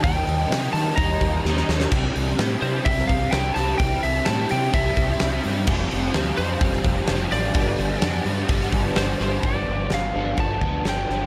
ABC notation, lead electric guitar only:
X:1
M:4/4
L:1/8
Q:1/4=128
K:Gmix
V:1 name="Lead electric guitar"
g3 a _b3 z | z3 c e f g a | g e a g e3 z | z3 c4 d- |
d6 c c | d2 f2 a2 g2 |]